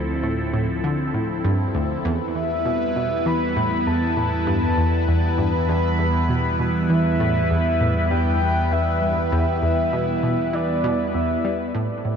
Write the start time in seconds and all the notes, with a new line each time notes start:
Already playing: D2 F3 C4 E4 A4
0.23 A2
0.54 A2
0.84 D3
1.14 A2
1.45 G2
1.75 D2
2.04 E2 G3 B3 B4
2.35 E2 E5
2.66 B2
2.96 B2
3.26 E3 B5
3.56 A2
3.87 E2 A5
4.17 A2
4.47 G2 A5
4.78 E2
5.08 E2
5.38 G2
5.69 E2 B5
5.99 E2
6.29 B2
6.59 B2
6.90 E3 E5
7.20 A2
7.50 E2
7.81 A2
8.11 G2 G5
8.41 E2
8.71 E2 E5
9.02 G2
9.32 E2 E5
9.62 E2
9.93 B2
10.23 B2
10.53 E3 D5
10.84 B2
11.14 E2 E5
11.45 G3
11.75 A1 A2 G3 C4 E4 A4 A5
12.05 A2